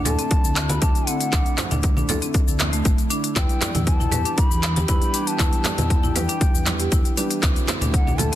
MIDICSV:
0, 0, Header, 1, 7, 480
1, 0, Start_track
1, 0, Key_signature, 1, "minor"
1, 0, Tempo, 508475
1, 1253, Time_signature, 4, 2, 24, 8
1, 7883, End_track
2, 0, Start_track
2, 0, Title_t, "Bansuri"
2, 0, Program_c, 0, 73
2, 55, Note_on_c, 0, 81, 108
2, 662, Note_on_c, 0, 83, 111
2, 676, Note_off_c, 0, 81, 0
2, 770, Note_off_c, 0, 83, 0
2, 776, Note_on_c, 0, 81, 108
2, 1015, Note_on_c, 0, 78, 97
2, 1029, Note_off_c, 0, 81, 0
2, 1734, Note_off_c, 0, 78, 0
2, 3172, Note_on_c, 0, 79, 109
2, 3618, Note_off_c, 0, 79, 0
2, 3650, Note_on_c, 0, 81, 108
2, 4130, Note_on_c, 0, 83, 119
2, 4144, Note_off_c, 0, 81, 0
2, 4604, Note_off_c, 0, 83, 0
2, 4610, Note_on_c, 0, 83, 113
2, 4975, Note_on_c, 0, 81, 107
2, 4989, Note_off_c, 0, 83, 0
2, 5808, Note_on_c, 0, 79, 91
2, 5822, Note_off_c, 0, 81, 0
2, 6770, Note_off_c, 0, 79, 0
2, 7496, Note_on_c, 0, 78, 96
2, 7737, Note_on_c, 0, 81, 104
2, 7751, Note_off_c, 0, 78, 0
2, 7883, Note_off_c, 0, 81, 0
2, 7883, End_track
3, 0, Start_track
3, 0, Title_t, "Marimba"
3, 0, Program_c, 1, 12
3, 49, Note_on_c, 1, 69, 101
3, 118, Note_off_c, 1, 69, 0
3, 175, Note_on_c, 1, 60, 80
3, 280, Note_off_c, 1, 60, 0
3, 655, Note_on_c, 1, 66, 83
3, 765, Note_off_c, 1, 66, 0
3, 770, Note_on_c, 1, 62, 80
3, 890, Note_off_c, 1, 62, 0
3, 1011, Note_on_c, 1, 60, 76
3, 1080, Note_off_c, 1, 60, 0
3, 1251, Note_on_c, 1, 62, 87
3, 1319, Note_off_c, 1, 62, 0
3, 1491, Note_on_c, 1, 72, 76
3, 1611, Note_off_c, 1, 72, 0
3, 1616, Note_on_c, 1, 62, 79
3, 1726, Note_off_c, 1, 62, 0
3, 1858, Note_on_c, 1, 62, 78
3, 1961, Note_off_c, 1, 62, 0
3, 1973, Note_on_c, 1, 69, 101
3, 2040, Note_off_c, 1, 69, 0
3, 2097, Note_on_c, 1, 60, 80
3, 2201, Note_off_c, 1, 60, 0
3, 2576, Note_on_c, 1, 57, 82
3, 2680, Note_off_c, 1, 57, 0
3, 2691, Note_on_c, 1, 57, 84
3, 2805, Note_off_c, 1, 57, 0
3, 2930, Note_on_c, 1, 62, 104
3, 3044, Note_off_c, 1, 62, 0
3, 3170, Note_on_c, 1, 64, 84
3, 3239, Note_off_c, 1, 64, 0
3, 3411, Note_on_c, 1, 74, 76
3, 3531, Note_off_c, 1, 74, 0
3, 3536, Note_on_c, 1, 64, 78
3, 3646, Note_off_c, 1, 64, 0
3, 3778, Note_on_c, 1, 64, 78
3, 3881, Note_off_c, 1, 64, 0
3, 3891, Note_on_c, 1, 71, 99
3, 3959, Note_off_c, 1, 71, 0
3, 4017, Note_on_c, 1, 62, 74
3, 4121, Note_off_c, 1, 62, 0
3, 4497, Note_on_c, 1, 67, 77
3, 4606, Note_off_c, 1, 67, 0
3, 4612, Note_on_c, 1, 64, 87
3, 4731, Note_off_c, 1, 64, 0
3, 4851, Note_on_c, 1, 62, 74
3, 4920, Note_off_c, 1, 62, 0
3, 5092, Note_on_c, 1, 64, 88
3, 5160, Note_off_c, 1, 64, 0
3, 5330, Note_on_c, 1, 74, 78
3, 5450, Note_off_c, 1, 74, 0
3, 5456, Note_on_c, 1, 64, 79
3, 5566, Note_off_c, 1, 64, 0
3, 5697, Note_on_c, 1, 64, 82
3, 5801, Note_off_c, 1, 64, 0
3, 5810, Note_on_c, 1, 71, 104
3, 5879, Note_off_c, 1, 71, 0
3, 5936, Note_on_c, 1, 62, 78
3, 6040, Note_off_c, 1, 62, 0
3, 6415, Note_on_c, 1, 67, 76
3, 6525, Note_off_c, 1, 67, 0
3, 6531, Note_on_c, 1, 64, 85
3, 6651, Note_off_c, 1, 64, 0
3, 6772, Note_on_c, 1, 62, 78
3, 6840, Note_off_c, 1, 62, 0
3, 7010, Note_on_c, 1, 62, 89
3, 7079, Note_off_c, 1, 62, 0
3, 7252, Note_on_c, 1, 72, 74
3, 7371, Note_off_c, 1, 72, 0
3, 7376, Note_on_c, 1, 62, 75
3, 7486, Note_off_c, 1, 62, 0
3, 7617, Note_on_c, 1, 62, 76
3, 7721, Note_off_c, 1, 62, 0
3, 7730, Note_on_c, 1, 69, 101
3, 7799, Note_off_c, 1, 69, 0
3, 7855, Note_on_c, 1, 60, 77
3, 7883, Note_off_c, 1, 60, 0
3, 7883, End_track
4, 0, Start_track
4, 0, Title_t, "Felt piano"
4, 0, Program_c, 2, 0
4, 3172, Note_on_c, 2, 55, 81
4, 3172, Note_on_c, 2, 62, 71
4, 3172, Note_on_c, 2, 64, 75
4, 3172, Note_on_c, 2, 71, 88
4, 4584, Note_off_c, 2, 62, 0
4, 4585, Note_off_c, 2, 55, 0
4, 4585, Note_off_c, 2, 64, 0
4, 4585, Note_off_c, 2, 71, 0
4, 4610, Note_on_c, 2, 55, 104
4, 4610, Note_on_c, 2, 64, 90
4, 4611, Note_on_c, 2, 62, 94
4, 4611, Note_on_c, 2, 71, 114
4, 5064, Note_off_c, 2, 55, 0
4, 5064, Note_off_c, 2, 62, 0
4, 5064, Note_off_c, 2, 64, 0
4, 5064, Note_off_c, 2, 71, 0
4, 5090, Note_on_c, 2, 62, 77
4, 5090, Note_on_c, 2, 64, 76
4, 5091, Note_on_c, 2, 55, 81
4, 5091, Note_on_c, 2, 71, 98
4, 6264, Note_off_c, 2, 55, 0
4, 6264, Note_off_c, 2, 62, 0
4, 6264, Note_off_c, 2, 64, 0
4, 6264, Note_off_c, 2, 71, 0
4, 6291, Note_on_c, 2, 55, 78
4, 6291, Note_on_c, 2, 62, 71
4, 6291, Note_on_c, 2, 64, 69
4, 6292, Note_on_c, 2, 71, 85
4, 6744, Note_off_c, 2, 55, 0
4, 6744, Note_off_c, 2, 62, 0
4, 6744, Note_off_c, 2, 64, 0
4, 6744, Note_off_c, 2, 71, 0
4, 6772, Note_on_c, 2, 55, 88
4, 6772, Note_on_c, 2, 62, 77
4, 6772, Note_on_c, 2, 64, 73
4, 6772, Note_on_c, 2, 71, 89
4, 6984, Note_off_c, 2, 71, 0
4, 6985, Note_off_c, 2, 55, 0
4, 6985, Note_off_c, 2, 62, 0
4, 6985, Note_off_c, 2, 64, 0
4, 7013, Note_on_c, 2, 54, 77
4, 7883, Note_off_c, 2, 54, 0
4, 7883, End_track
5, 0, Start_track
5, 0, Title_t, "Analog synth pad"
5, 0, Program_c, 3, 89
5, 0, Note_on_c, 3, 50, 81
5, 0, Note_on_c, 3, 57, 79
5, 0, Note_on_c, 3, 62, 76
5, 0, Note_on_c, 3, 64, 80
5, 3134, Note_off_c, 3, 57, 0
5, 3134, Note_off_c, 3, 62, 0
5, 3135, Note_off_c, 3, 64, 0
5, 3136, Note_off_c, 3, 50, 0
5, 3173, Note_on_c, 3, 79, 78
5, 3174, Note_on_c, 3, 52, 82
5, 3174, Note_on_c, 3, 59, 75
5, 3175, Note_on_c, 3, 67, 89
5, 6975, Note_off_c, 3, 59, 0
5, 6976, Note_off_c, 3, 52, 0
5, 6976, Note_off_c, 3, 67, 0
5, 7009, Note_on_c, 3, 57, 74
5, 7010, Note_on_c, 3, 50, 87
5, 7010, Note_on_c, 3, 64, 78
5, 7883, Note_off_c, 3, 50, 0
5, 7883, Note_off_c, 3, 57, 0
5, 7883, Note_off_c, 3, 64, 0
5, 7883, Note_off_c, 3, 79, 0
5, 7883, End_track
6, 0, Start_track
6, 0, Title_t, "Detuned saw bass"
6, 0, Program_c, 4, 39
6, 54, Note_on_c, 4, 38, 89
6, 157, Note_off_c, 4, 38, 0
6, 416, Note_on_c, 4, 38, 89
6, 740, Note_off_c, 4, 38, 0
6, 774, Note_on_c, 4, 38, 91
6, 877, Note_off_c, 4, 38, 0
6, 1254, Note_on_c, 4, 38, 95
6, 1357, Note_off_c, 4, 38, 0
6, 1619, Note_on_c, 4, 38, 106
6, 1941, Note_off_c, 4, 38, 0
6, 1971, Note_on_c, 4, 38, 88
6, 2075, Note_off_c, 4, 38, 0
6, 2339, Note_on_c, 4, 38, 91
6, 2662, Note_off_c, 4, 38, 0
6, 2693, Note_on_c, 4, 33, 107
6, 2797, Note_off_c, 4, 33, 0
6, 3173, Note_on_c, 4, 40, 97
6, 3276, Note_off_c, 4, 40, 0
6, 3539, Note_on_c, 4, 40, 104
6, 3861, Note_off_c, 4, 40, 0
6, 3896, Note_on_c, 4, 40, 84
6, 3998, Note_off_c, 4, 40, 0
6, 4258, Note_on_c, 4, 40, 88
6, 4581, Note_off_c, 4, 40, 0
6, 4613, Note_on_c, 4, 40, 86
6, 4716, Note_off_c, 4, 40, 0
6, 5094, Note_on_c, 4, 40, 103
6, 5197, Note_off_c, 4, 40, 0
6, 5458, Note_on_c, 4, 40, 107
6, 5781, Note_off_c, 4, 40, 0
6, 5812, Note_on_c, 4, 40, 85
6, 5916, Note_off_c, 4, 40, 0
6, 6179, Note_on_c, 4, 40, 88
6, 6501, Note_off_c, 4, 40, 0
6, 6533, Note_on_c, 4, 40, 96
6, 6636, Note_off_c, 4, 40, 0
6, 7013, Note_on_c, 4, 38, 96
6, 7116, Note_off_c, 4, 38, 0
6, 7376, Note_on_c, 4, 38, 105
6, 7700, Note_off_c, 4, 38, 0
6, 7734, Note_on_c, 4, 38, 87
6, 7837, Note_off_c, 4, 38, 0
6, 7883, End_track
7, 0, Start_track
7, 0, Title_t, "Drums"
7, 52, Note_on_c, 9, 45, 83
7, 52, Note_on_c, 9, 46, 86
7, 52, Note_on_c, 9, 64, 105
7, 58, Note_on_c, 9, 82, 98
7, 146, Note_off_c, 9, 45, 0
7, 146, Note_off_c, 9, 46, 0
7, 146, Note_off_c, 9, 64, 0
7, 152, Note_off_c, 9, 82, 0
7, 175, Note_on_c, 9, 42, 40
7, 182, Note_on_c, 9, 82, 52
7, 270, Note_off_c, 9, 42, 0
7, 276, Note_off_c, 9, 82, 0
7, 290, Note_on_c, 9, 42, 51
7, 294, Note_on_c, 9, 36, 127
7, 297, Note_on_c, 9, 82, 54
7, 385, Note_off_c, 9, 42, 0
7, 388, Note_off_c, 9, 36, 0
7, 391, Note_off_c, 9, 82, 0
7, 421, Note_on_c, 9, 82, 96
7, 515, Note_off_c, 9, 82, 0
7, 531, Note_on_c, 9, 39, 97
7, 531, Note_on_c, 9, 46, 87
7, 537, Note_on_c, 9, 82, 55
7, 625, Note_off_c, 9, 39, 0
7, 625, Note_off_c, 9, 46, 0
7, 632, Note_off_c, 9, 82, 0
7, 655, Note_on_c, 9, 63, 101
7, 656, Note_on_c, 9, 42, 42
7, 663, Note_on_c, 9, 82, 55
7, 750, Note_off_c, 9, 63, 0
7, 751, Note_off_c, 9, 42, 0
7, 757, Note_off_c, 9, 82, 0
7, 771, Note_on_c, 9, 42, 52
7, 774, Note_on_c, 9, 36, 121
7, 777, Note_on_c, 9, 82, 93
7, 865, Note_off_c, 9, 42, 0
7, 868, Note_off_c, 9, 36, 0
7, 872, Note_off_c, 9, 82, 0
7, 898, Note_on_c, 9, 42, 29
7, 904, Note_on_c, 9, 82, 57
7, 992, Note_off_c, 9, 42, 0
7, 998, Note_off_c, 9, 82, 0
7, 1013, Note_on_c, 9, 46, 85
7, 1019, Note_on_c, 9, 82, 99
7, 1107, Note_off_c, 9, 46, 0
7, 1113, Note_off_c, 9, 82, 0
7, 1138, Note_on_c, 9, 42, 43
7, 1144, Note_on_c, 9, 82, 55
7, 1232, Note_off_c, 9, 42, 0
7, 1238, Note_off_c, 9, 82, 0
7, 1252, Note_on_c, 9, 39, 80
7, 1252, Note_on_c, 9, 42, 57
7, 1254, Note_on_c, 9, 36, 127
7, 1259, Note_on_c, 9, 82, 90
7, 1347, Note_off_c, 9, 39, 0
7, 1347, Note_off_c, 9, 42, 0
7, 1348, Note_off_c, 9, 36, 0
7, 1353, Note_off_c, 9, 82, 0
7, 1377, Note_on_c, 9, 42, 29
7, 1383, Note_on_c, 9, 82, 56
7, 1471, Note_off_c, 9, 42, 0
7, 1477, Note_off_c, 9, 82, 0
7, 1490, Note_on_c, 9, 39, 94
7, 1490, Note_on_c, 9, 46, 83
7, 1494, Note_on_c, 9, 64, 109
7, 1496, Note_on_c, 9, 82, 97
7, 1584, Note_off_c, 9, 39, 0
7, 1584, Note_off_c, 9, 46, 0
7, 1588, Note_off_c, 9, 64, 0
7, 1590, Note_off_c, 9, 82, 0
7, 1616, Note_on_c, 9, 42, 43
7, 1616, Note_on_c, 9, 45, 96
7, 1621, Note_on_c, 9, 63, 100
7, 1622, Note_on_c, 9, 82, 57
7, 1710, Note_off_c, 9, 42, 0
7, 1710, Note_off_c, 9, 45, 0
7, 1715, Note_off_c, 9, 63, 0
7, 1716, Note_off_c, 9, 82, 0
7, 1730, Note_on_c, 9, 42, 55
7, 1734, Note_on_c, 9, 36, 126
7, 1736, Note_on_c, 9, 82, 56
7, 1824, Note_off_c, 9, 42, 0
7, 1828, Note_off_c, 9, 36, 0
7, 1830, Note_off_c, 9, 82, 0
7, 1857, Note_on_c, 9, 45, 89
7, 1857, Note_on_c, 9, 63, 76
7, 1863, Note_on_c, 9, 82, 60
7, 1951, Note_off_c, 9, 45, 0
7, 1952, Note_off_c, 9, 63, 0
7, 1958, Note_off_c, 9, 82, 0
7, 1971, Note_on_c, 9, 46, 86
7, 1977, Note_on_c, 9, 64, 99
7, 1977, Note_on_c, 9, 82, 93
7, 2065, Note_off_c, 9, 46, 0
7, 2071, Note_off_c, 9, 82, 0
7, 2072, Note_off_c, 9, 64, 0
7, 2096, Note_on_c, 9, 42, 43
7, 2102, Note_on_c, 9, 82, 52
7, 2190, Note_off_c, 9, 42, 0
7, 2197, Note_off_c, 9, 82, 0
7, 2212, Note_on_c, 9, 42, 51
7, 2214, Note_on_c, 9, 36, 124
7, 2218, Note_on_c, 9, 82, 54
7, 2306, Note_off_c, 9, 42, 0
7, 2308, Note_off_c, 9, 36, 0
7, 2312, Note_off_c, 9, 82, 0
7, 2342, Note_on_c, 9, 82, 99
7, 2436, Note_off_c, 9, 82, 0
7, 2448, Note_on_c, 9, 64, 83
7, 2452, Note_on_c, 9, 39, 89
7, 2452, Note_on_c, 9, 46, 91
7, 2458, Note_on_c, 9, 82, 57
7, 2542, Note_off_c, 9, 64, 0
7, 2546, Note_off_c, 9, 39, 0
7, 2546, Note_off_c, 9, 46, 0
7, 2552, Note_off_c, 9, 82, 0
7, 2577, Note_on_c, 9, 42, 43
7, 2583, Note_on_c, 9, 82, 53
7, 2672, Note_off_c, 9, 42, 0
7, 2678, Note_off_c, 9, 82, 0
7, 2692, Note_on_c, 9, 42, 53
7, 2694, Note_on_c, 9, 36, 125
7, 2698, Note_on_c, 9, 82, 90
7, 2786, Note_off_c, 9, 42, 0
7, 2788, Note_off_c, 9, 36, 0
7, 2792, Note_off_c, 9, 82, 0
7, 2816, Note_on_c, 9, 42, 31
7, 2823, Note_on_c, 9, 82, 53
7, 2911, Note_off_c, 9, 42, 0
7, 2917, Note_off_c, 9, 82, 0
7, 2931, Note_on_c, 9, 46, 86
7, 2937, Note_on_c, 9, 82, 96
7, 3025, Note_off_c, 9, 46, 0
7, 3032, Note_off_c, 9, 82, 0
7, 3057, Note_on_c, 9, 42, 43
7, 3063, Note_on_c, 9, 82, 56
7, 3152, Note_off_c, 9, 42, 0
7, 3158, Note_off_c, 9, 82, 0
7, 3172, Note_on_c, 9, 39, 79
7, 3172, Note_on_c, 9, 42, 56
7, 3174, Note_on_c, 9, 36, 125
7, 3178, Note_on_c, 9, 82, 94
7, 3266, Note_off_c, 9, 39, 0
7, 3266, Note_off_c, 9, 42, 0
7, 3268, Note_off_c, 9, 36, 0
7, 3273, Note_off_c, 9, 82, 0
7, 3297, Note_on_c, 9, 42, 32
7, 3304, Note_on_c, 9, 82, 53
7, 3392, Note_off_c, 9, 42, 0
7, 3398, Note_off_c, 9, 82, 0
7, 3413, Note_on_c, 9, 39, 86
7, 3413, Note_on_c, 9, 46, 88
7, 3413, Note_on_c, 9, 64, 101
7, 3419, Note_on_c, 9, 82, 97
7, 3507, Note_off_c, 9, 39, 0
7, 3507, Note_off_c, 9, 46, 0
7, 3507, Note_off_c, 9, 64, 0
7, 3513, Note_off_c, 9, 82, 0
7, 3538, Note_on_c, 9, 42, 46
7, 3538, Note_on_c, 9, 45, 99
7, 3540, Note_on_c, 9, 63, 96
7, 3544, Note_on_c, 9, 82, 51
7, 3632, Note_off_c, 9, 42, 0
7, 3632, Note_off_c, 9, 45, 0
7, 3635, Note_off_c, 9, 63, 0
7, 3639, Note_off_c, 9, 82, 0
7, 3652, Note_on_c, 9, 42, 54
7, 3653, Note_on_c, 9, 36, 124
7, 3659, Note_on_c, 9, 82, 53
7, 3747, Note_off_c, 9, 42, 0
7, 3748, Note_off_c, 9, 36, 0
7, 3753, Note_off_c, 9, 82, 0
7, 3778, Note_on_c, 9, 45, 94
7, 3784, Note_on_c, 9, 82, 54
7, 3786, Note_on_c, 9, 63, 72
7, 3872, Note_off_c, 9, 45, 0
7, 3878, Note_off_c, 9, 82, 0
7, 3880, Note_off_c, 9, 63, 0
7, 3884, Note_on_c, 9, 64, 103
7, 3891, Note_on_c, 9, 45, 87
7, 3891, Note_on_c, 9, 46, 88
7, 3897, Note_on_c, 9, 82, 90
7, 3979, Note_off_c, 9, 64, 0
7, 3985, Note_off_c, 9, 45, 0
7, 3985, Note_off_c, 9, 46, 0
7, 3991, Note_off_c, 9, 82, 0
7, 4016, Note_on_c, 9, 42, 41
7, 4022, Note_on_c, 9, 82, 51
7, 4110, Note_off_c, 9, 42, 0
7, 4116, Note_off_c, 9, 82, 0
7, 4132, Note_on_c, 9, 42, 56
7, 4134, Note_on_c, 9, 36, 120
7, 4138, Note_on_c, 9, 82, 51
7, 4226, Note_off_c, 9, 42, 0
7, 4228, Note_off_c, 9, 36, 0
7, 4232, Note_off_c, 9, 82, 0
7, 4261, Note_on_c, 9, 82, 95
7, 4356, Note_off_c, 9, 82, 0
7, 4371, Note_on_c, 9, 39, 92
7, 4371, Note_on_c, 9, 46, 86
7, 4378, Note_on_c, 9, 82, 54
7, 4466, Note_off_c, 9, 39, 0
7, 4466, Note_off_c, 9, 46, 0
7, 4472, Note_off_c, 9, 82, 0
7, 4496, Note_on_c, 9, 42, 46
7, 4503, Note_on_c, 9, 82, 49
7, 4504, Note_on_c, 9, 63, 91
7, 4591, Note_off_c, 9, 42, 0
7, 4597, Note_off_c, 9, 82, 0
7, 4599, Note_off_c, 9, 63, 0
7, 4610, Note_on_c, 9, 42, 57
7, 4613, Note_on_c, 9, 36, 116
7, 4616, Note_on_c, 9, 82, 92
7, 4704, Note_off_c, 9, 42, 0
7, 4708, Note_off_c, 9, 36, 0
7, 4710, Note_off_c, 9, 82, 0
7, 4735, Note_on_c, 9, 42, 31
7, 4741, Note_on_c, 9, 82, 54
7, 4829, Note_off_c, 9, 42, 0
7, 4835, Note_off_c, 9, 82, 0
7, 4850, Note_on_c, 9, 46, 89
7, 4856, Note_on_c, 9, 82, 90
7, 4945, Note_off_c, 9, 46, 0
7, 4951, Note_off_c, 9, 82, 0
7, 4976, Note_on_c, 9, 42, 45
7, 4983, Note_on_c, 9, 82, 52
7, 5071, Note_off_c, 9, 42, 0
7, 5077, Note_off_c, 9, 82, 0
7, 5091, Note_on_c, 9, 39, 77
7, 5091, Note_on_c, 9, 42, 61
7, 5092, Note_on_c, 9, 36, 116
7, 5097, Note_on_c, 9, 82, 88
7, 5185, Note_off_c, 9, 39, 0
7, 5185, Note_off_c, 9, 42, 0
7, 5187, Note_off_c, 9, 36, 0
7, 5192, Note_off_c, 9, 82, 0
7, 5217, Note_on_c, 9, 42, 32
7, 5223, Note_on_c, 9, 82, 52
7, 5311, Note_off_c, 9, 42, 0
7, 5317, Note_off_c, 9, 82, 0
7, 5327, Note_on_c, 9, 64, 106
7, 5330, Note_on_c, 9, 39, 92
7, 5330, Note_on_c, 9, 46, 93
7, 5337, Note_on_c, 9, 82, 95
7, 5422, Note_off_c, 9, 64, 0
7, 5425, Note_off_c, 9, 39, 0
7, 5425, Note_off_c, 9, 46, 0
7, 5431, Note_off_c, 9, 82, 0
7, 5458, Note_on_c, 9, 42, 45
7, 5458, Note_on_c, 9, 45, 96
7, 5458, Note_on_c, 9, 63, 99
7, 5464, Note_on_c, 9, 82, 50
7, 5552, Note_off_c, 9, 42, 0
7, 5552, Note_off_c, 9, 45, 0
7, 5553, Note_off_c, 9, 63, 0
7, 5558, Note_off_c, 9, 82, 0
7, 5572, Note_on_c, 9, 36, 120
7, 5573, Note_on_c, 9, 42, 59
7, 5579, Note_on_c, 9, 82, 51
7, 5667, Note_off_c, 9, 36, 0
7, 5667, Note_off_c, 9, 42, 0
7, 5674, Note_off_c, 9, 82, 0
7, 5694, Note_on_c, 9, 63, 59
7, 5698, Note_on_c, 9, 45, 86
7, 5704, Note_on_c, 9, 82, 56
7, 5789, Note_off_c, 9, 63, 0
7, 5792, Note_off_c, 9, 45, 0
7, 5798, Note_off_c, 9, 82, 0
7, 5812, Note_on_c, 9, 46, 91
7, 5812, Note_on_c, 9, 64, 100
7, 5818, Note_on_c, 9, 82, 89
7, 5906, Note_off_c, 9, 46, 0
7, 5907, Note_off_c, 9, 64, 0
7, 5912, Note_off_c, 9, 82, 0
7, 5938, Note_on_c, 9, 42, 47
7, 5945, Note_on_c, 9, 82, 48
7, 6033, Note_off_c, 9, 42, 0
7, 6039, Note_off_c, 9, 82, 0
7, 6051, Note_on_c, 9, 42, 58
7, 6052, Note_on_c, 9, 36, 114
7, 6057, Note_on_c, 9, 82, 51
7, 6145, Note_off_c, 9, 42, 0
7, 6146, Note_off_c, 9, 36, 0
7, 6151, Note_off_c, 9, 82, 0
7, 6182, Note_on_c, 9, 82, 91
7, 6277, Note_off_c, 9, 82, 0
7, 6290, Note_on_c, 9, 39, 88
7, 6290, Note_on_c, 9, 46, 85
7, 6294, Note_on_c, 9, 64, 90
7, 6297, Note_on_c, 9, 82, 52
7, 6385, Note_off_c, 9, 39, 0
7, 6385, Note_off_c, 9, 46, 0
7, 6388, Note_off_c, 9, 64, 0
7, 6391, Note_off_c, 9, 82, 0
7, 6415, Note_on_c, 9, 42, 45
7, 6422, Note_on_c, 9, 82, 51
7, 6510, Note_off_c, 9, 42, 0
7, 6516, Note_off_c, 9, 82, 0
7, 6531, Note_on_c, 9, 42, 57
7, 6533, Note_on_c, 9, 36, 120
7, 6537, Note_on_c, 9, 82, 86
7, 6625, Note_off_c, 9, 42, 0
7, 6627, Note_off_c, 9, 36, 0
7, 6632, Note_off_c, 9, 82, 0
7, 6657, Note_on_c, 9, 42, 34
7, 6663, Note_on_c, 9, 82, 51
7, 6751, Note_off_c, 9, 42, 0
7, 6758, Note_off_c, 9, 82, 0
7, 6772, Note_on_c, 9, 46, 96
7, 6779, Note_on_c, 9, 82, 86
7, 6867, Note_off_c, 9, 46, 0
7, 6873, Note_off_c, 9, 82, 0
7, 6896, Note_on_c, 9, 42, 48
7, 6903, Note_on_c, 9, 82, 52
7, 6991, Note_off_c, 9, 42, 0
7, 6997, Note_off_c, 9, 82, 0
7, 7012, Note_on_c, 9, 39, 78
7, 7012, Note_on_c, 9, 42, 59
7, 7013, Note_on_c, 9, 36, 118
7, 7018, Note_on_c, 9, 82, 91
7, 7106, Note_off_c, 9, 39, 0
7, 7106, Note_off_c, 9, 42, 0
7, 7107, Note_off_c, 9, 36, 0
7, 7113, Note_off_c, 9, 82, 0
7, 7138, Note_on_c, 9, 42, 33
7, 7145, Note_on_c, 9, 82, 51
7, 7233, Note_off_c, 9, 42, 0
7, 7239, Note_off_c, 9, 82, 0
7, 7250, Note_on_c, 9, 64, 107
7, 7253, Note_on_c, 9, 39, 92
7, 7253, Note_on_c, 9, 46, 92
7, 7260, Note_on_c, 9, 82, 88
7, 7345, Note_off_c, 9, 64, 0
7, 7348, Note_off_c, 9, 39, 0
7, 7348, Note_off_c, 9, 46, 0
7, 7354, Note_off_c, 9, 82, 0
7, 7377, Note_on_c, 9, 63, 96
7, 7380, Note_on_c, 9, 42, 47
7, 7380, Note_on_c, 9, 45, 89
7, 7387, Note_on_c, 9, 82, 51
7, 7471, Note_off_c, 9, 63, 0
7, 7475, Note_off_c, 9, 42, 0
7, 7475, Note_off_c, 9, 45, 0
7, 7481, Note_off_c, 9, 82, 0
7, 7493, Note_on_c, 9, 36, 120
7, 7494, Note_on_c, 9, 42, 61
7, 7501, Note_on_c, 9, 82, 53
7, 7587, Note_off_c, 9, 36, 0
7, 7589, Note_off_c, 9, 42, 0
7, 7595, Note_off_c, 9, 82, 0
7, 7620, Note_on_c, 9, 45, 92
7, 7622, Note_on_c, 9, 63, 70
7, 7627, Note_on_c, 9, 82, 51
7, 7715, Note_off_c, 9, 45, 0
7, 7716, Note_off_c, 9, 63, 0
7, 7721, Note_off_c, 9, 82, 0
7, 7724, Note_on_c, 9, 64, 100
7, 7735, Note_on_c, 9, 45, 90
7, 7735, Note_on_c, 9, 46, 93
7, 7741, Note_on_c, 9, 82, 87
7, 7818, Note_off_c, 9, 64, 0
7, 7829, Note_off_c, 9, 45, 0
7, 7829, Note_off_c, 9, 46, 0
7, 7835, Note_off_c, 9, 82, 0
7, 7883, End_track
0, 0, End_of_file